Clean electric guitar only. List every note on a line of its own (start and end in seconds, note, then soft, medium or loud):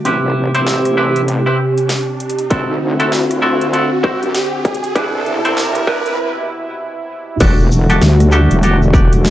0.05 0.51 C4 medium
0.05 0.51 E4 medium
0.05 0.51 G4 medium
0.05 0.51 B4 medium
0.55 0.95 C4 medium
0.55 0.95 E4 medium
0.55 0.95 G4 medium
0.55 0.95 C5 loud
0.97 1.21 C4 medium
0.97 1.21 E4 medium
0.97 1.21 G4 medium
0.97 1.21 B4 loud
1.46 1.57 C4 medium
1.46 1.57 E4 medium
1.46 1.57 G4 medium
1.46 1.57 B4 medium
2.50 2.74 C4 medium
2.50 2.74 E4 medium
2.50 2.74 F#4 medium
2.50 2.74 A4 medium
3.00 3.10 C4 medium
3.00 3.10 E4 medium
3.00 3.10 F#4 medium
3.00 3.10 A4 medium
3.42 3.66 C4 medium
3.42 3.66 E4 medium
3.42 3.66 F#4 medium
3.42 3.66 A4 medium
3.73 3.89 C4 loud
3.73 3.89 E4 medium
3.73 3.89 F#4 medium
3.73 3.89 A4 loud
4.03 4.20 C4 medium
4.03 4.20 E4 medium
4.03 4.20 F#4 medium
4.03 4.20 C5 medium
4.95 5.41 D4 medium
4.95 5.41 E4 medium
4.95 5.41 G4 medium
4.95 5.41 B4 medium
5.45 5.85 D4 medium
5.45 5.85 E4 medium
5.45 5.85 G4 medium
5.45 5.85 C5 loud
5.87 6.11 D4 medium
5.87 6.11 E4 medium
5.87 6.11 G4 medium
5.87 6.11 B4 loud
7.40 7.64 D4 loud
7.40 7.64 F#4 medium
7.40 7.64 G4 medium
7.40 7.64 A4 medium
7.90 8.00 D4 medium
7.90 8.00 F#4 medium
7.90 8.00 G4 medium
7.90 8.00 A4 medium
8.32 8.56 D4 medium
8.32 8.56 F#4 medium
8.32 8.56 G4 medium
8.32 8.56 A4 medium
8.63 8.79 D4 medium
8.63 8.79 F#4 medium
8.63 8.79 G4 medium
8.63 8.79 A4 loud
8.93 9.10 D4 medium
8.93 9.10 F#4 medium
8.93 9.10 G4 medium
8.93 9.10 D5 medium